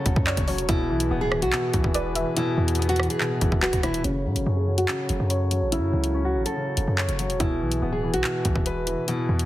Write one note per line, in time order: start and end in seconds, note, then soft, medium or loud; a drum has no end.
0.00 0.70 C#3 loud
0.00 0.06 F#3 medium
0.00 0.65 F#3 medium
0.00 0.48 C#4 medium
0.00 0.65 F#4 medium
0.00 0.65 A4 medium
0.00 0.27 C#5 medium
0.00 0.65 C#5 medium
0.06 0.16 F#1 loud
0.06 0.46 F#3 medium
0.06 kick medium
0.06 closed hi-hat medium
0.16 0.36 F#2 loud
0.16 kick loud
0.26 0.69 C#5 medium
0.26 0.47 D5 medium
0.26 clap loud
0.37 0.60 F#1 loud
0.37 kick loud
0.37 closed hi-hat loud
0.48 0.69 F#3 medium
0.48 0.68 C#5 medium
0.48 open hi-hat medium
0.58 0.68 E1 loud
0.58 closed hi-hat medium
0.69 0.91 E1 loud
0.69 1.51 B2 medium
0.69 3.87 E3 medium
0.69 1.18 E4 loud
0.69 3.87 E4 medium
0.69 3.87 G#4 medium
0.69 3.87 B4 loud
0.69 kick loud
0.69 closed hi-hat medium
0.90 1.10 B1 loud
0.90 1.30 E3 medium
1.00 closed hi-hat medium
1.11 1.44 D1 loud
1.11 2.16 B3 medium
1.21 1.40 G#4 medium
1.32 1.72 E3 medium
1.32 cross-stick loud
1.42 1.52 B1 loud
1.42 2.33 F#4 medium
1.42 closed hi-hat medium
1.53 2.35 B2 medium
1.53 clap loud
1.74 1.84 B1 loud
1.74 2.14 E3 medium
1.74 kick medium
1.74 closed hi-hat medium
1.84 2.24 E1 loud
1.84 kick loud
1.94 3.00 B4 loud
1.94 2.15 D5 medium
1.94 closed hi-hat medium
2.15 2.56 E3 medium
2.15 2.36 E5 medium
2.15 closed hi-hat medium
2.37 3.19 B2 loud
2.37 2.86 E4 loud
2.37 closed hi-hat medium
2.57 3.08 E2 loud
2.57 2.98 E3 medium
2.68 closed hi-hat medium
2.75 3.84 B3 medium
2.75 closed hi-hat medium
2.82 closed hi-hat medium
2.89 3.08 F#4 medium
2.89 closed hi-hat medium
2.96 3.40 E3 medium
2.96 cross-stick loud
2.96 closed hi-hat soft
3.03 closed hi-hat soft
3.10 3.59 G#4 medium
3.10 closed hi-hat medium
3.20 4.04 B2 medium
3.20 clap medium
3.41 3.51 E1 loud
3.41 3.82 E3 medium
3.41 kick medium
3.41 closed hi-hat medium
3.52 3.72 E1 loud
3.52 kick loud
3.62 3.81 F#4 medium
3.62 4.04 B4 loud
3.62 clap loud
3.73 3.95 E1 loud
3.73 kick loud
3.73 closed hi-hat loud
3.83 4.04 E3 medium
3.83 4.03 E4 medium
3.83 cross-stick medium
3.83 closed hi-hat medium
3.94 4.04 D1 loud
3.94 closed hi-hat medium
4.04 4.27 F#1 loud
4.04 4.87 C#3 medium
4.04 7.37 F#3 medium
4.04 4.54 C#4 medium
4.04 7.37 F#4 medium
4.04 7.37 A4 medium
4.04 7.37 C#5 medium
4.04 closed hi-hat medium
4.25 4.37 A2 loud
4.25 4.66 F#3 medium
4.36 4.46 F#1 loud
4.36 closed hi-hat medium
4.46 4.87 F#2 loud
4.46 5.51 C#4 medium
4.57 4.76 G#4 medium
4.67 5.08 F#3 medium
4.78 5.68 F#4 medium
4.78 closed hi-hat medium
4.88 5.71 C#3 medium
4.88 clap loud
5.09 5.19 F#1 loud
5.09 5.50 F#3 medium
5.09 closed hi-hat medium
5.20 5.63 F#2 loud
5.30 6.35 C#5 medium
5.30 closed hi-hat medium
5.51 5.92 F#3 medium
5.51 closed hi-hat medium
5.62 5.79 A1 loud
5.72 6.55 C#3 loud
5.72 6.22 E4 loud
5.72 closed hi-hat medium
5.78 5.92 F#2 loud
5.93 6.37 C#2 loud
5.93 6.34 F#3 medium
6.04 closed hi-hat medium
6.14 7.19 C#4 medium
6.25 6.44 F#4 medium
6.35 6.45 A1 loud
6.35 6.76 F#3 medium
6.46 7.36 A4 medium
6.46 closed hi-hat medium
6.56 7.40 C#3 medium
6.77 6.87 F#1 loud
6.77 7.18 F#3 medium
6.77 closed hi-hat medium
6.88 7.08 F#2 loud
6.98 7.40 C#5 medium
6.98 clap loud
7.09 7.31 F#1 loud
7.09 closed hi-hat medium
7.19 7.40 F#3 medium
7.19 closed hi-hat medium
7.30 7.40 E1 loud
7.30 closed hi-hat medium
7.40 7.63 E1 loud
7.40 8.22 B2 medium
7.40 9.45 E3 medium
7.40 7.89 E4 loud
7.40 9.45 E4 medium
7.40 9.45 G#4 medium
7.40 9.45 B4 medium
7.40 kick loud
7.40 closed hi-hat medium
7.61 7.81 B1 loud
7.61 8.02 E3 medium
7.72 closed hi-hat medium
7.82 8.15 D1 loud
7.82 8.87 B3 medium
7.92 8.12 G#4 medium
8.03 8.44 E3 medium
8.14 8.24 B1 loud
8.14 9.04 F#4 medium
8.14 closed hi-hat medium
8.24 9.06 B2 medium
8.24 clap loud
8.45 8.55 B1 loud
8.45 8.85 E3 medium
8.45 kick medium
8.45 closed hi-hat medium
8.56 8.96 E1 loud
8.56 kick loud
8.66 9.45 B4 loud
8.66 closed hi-hat medium
8.87 9.27 E3 medium
8.87 closed hi-hat medium
9.08 9.45 B2 loud
9.08 9.45 E4 medium
9.08 closed hi-hat medium
9.29 9.45 E2 loud
9.29 9.45 E3 medium
9.39 closed hi-hat medium